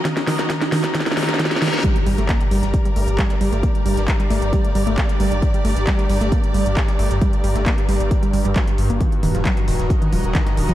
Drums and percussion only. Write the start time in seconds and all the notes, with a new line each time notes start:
0.05 kick, snare, closed hi-hat
0.17 snare, closed hi-hat
0.27 snare, open hi-hat
0.39 snare, closed hi-hat
0.50 kick, snare, closed hi-hat
0.61 snare, closed hi-hat
0.72 snare, open hi-hat
0.84 snare, closed hi-hat
0.95 kick, snare, closed hi-hat
1.00 snare
1.06 snare, closed hi-hat
1.12 snare
1.17 snare, open hi-hat
1.23 snare
1.29 snare, closed hi-hat
1.34 snare
1.39 kick, snare, closed hi-hat
1.45 snare
1.51 snare, closed hi-hat
1.56 snare
1.62 snare, open hi-hat
1.68 snare
1.74 snare, closed hi-hat
1.79 snare
1.84 kick, closed hi-hat
1.96 closed hi-hat
2.07 snare, closed hi-hat, open hi-hat
2.18 snare, closed hi-hat
2.29 kick, snare, clap, closed hi-hat
2.41 closed hi-hat
2.51 open hi-hat
2.63 snare, closed hi-hat
2.74 kick, closed hi-hat
2.85 closed hi-hat
2.96 closed hi-hat, open hi-hat
3.08 closed hi-hat
3.18 kick, snare, clap, closed hi-hat
3.30 snare, closed hi-hat
3.41 closed hi-hat, open hi-hat
3.53 closed hi-hat
3.63 kick, closed hi-hat
3.75 closed hi-hat
3.86 closed hi-hat, open hi-hat
3.97 snare, closed hi-hat
4.08 kick, snare, clap, closed hi-hat
4.20 closed hi-hat
4.30 closed hi-hat, open hi-hat
4.42 closed hi-hat
4.53 kick, closed hi-hat
4.65 closed hi-hat
4.75 closed hi-hat, open hi-hat
4.87 closed hi-hat
4.98 kick, snare, clap, closed hi-hat
5.09 closed hi-hat
5.20 closed hi-hat, open hi-hat
5.32 closed hi-hat
5.42 kick, closed hi-hat
5.54 closed hi-hat
5.65 snare, closed hi-hat, open hi-hat
5.76 snare, closed hi-hat
5.87 kick, snare, clap, closed hi-hat
5.99 closed hi-hat
6.10 open hi-hat
6.21 snare, closed hi-hat
6.32 kick, closed hi-hat
6.44 closed hi-hat
6.54 closed hi-hat, open hi-hat
6.66 closed hi-hat
6.77 kick, snare, clap, closed hi-hat
6.88 snare, closed hi-hat
6.99 closed hi-hat, open hi-hat
7.11 closed hi-hat
7.21 kick, closed hi-hat
7.33 closed hi-hat
7.44 closed hi-hat, open hi-hat
7.56 snare, closed hi-hat
7.66 kick, snare, clap, closed hi-hat
7.78 closed hi-hat
7.89 closed hi-hat, open hi-hat
8.00 closed hi-hat
8.11 kick, closed hi-hat
8.23 closed hi-hat
8.33 closed hi-hat, open hi-hat
8.45 closed hi-hat
8.56 kick, snare, clap, closed hi-hat
8.67 closed hi-hat
8.78 closed hi-hat, open hi-hat
8.90 closed hi-hat
9.01 kick, closed hi-hat
9.12 closed hi-hat
9.23 snare, closed hi-hat, open hi-hat
9.35 snare, closed hi-hat
9.45 kick, snare, clap, closed hi-hat
9.57 closed hi-hat
9.68 open hi-hat
9.79 snare, closed hi-hat
9.90 kick, closed hi-hat
10.02 closed hi-hat
10.13 closed hi-hat, open hi-hat
10.24 closed hi-hat
10.35 kick, snare, clap, closed hi-hat
10.47 snare, closed hi-hat
10.57 closed hi-hat, open hi-hat
10.69 closed hi-hat